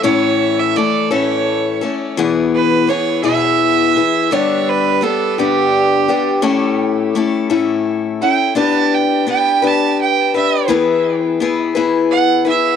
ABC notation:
X:1
M:6/8
L:1/16
Q:3/8=56
K:A
V:1 name="Fiddle"
c3 e d2 c4 z2 | [K:Edor] z2 B2 c2 e6 | c2 B2 A2 G6- | G2 z8 g2 |
a2 g2 g2 a2 g2 e2 | z8 f2 e2 |]
V:2 name="Steel-string acoustic guitar"
[A,,E,A,CA]4 [E,A,A]2 [A,,E,A,CA]4 [A,CA]2 | [K:Edor] [E,,B,,E,B,E^G]4 [E,B,EG]2 [E,,B,,E,B,EG]4 [E,B,EG]2 | [G,,D,G,B,DG]4 [G,B,DG]2 [G,,D,G,B,DG]4 [G,B,DG]2 | [A,,A,CEA]4 [A,CEA]2 [A,,A,CEA]4 [CEA]2 |
[B,DGB]4 [B,DGB]2 [B,DGB]4 [DGB]2 | [E,B,E^GB]4 [B,EGB]2 [E,B,EGB]4 [EGB]2 |]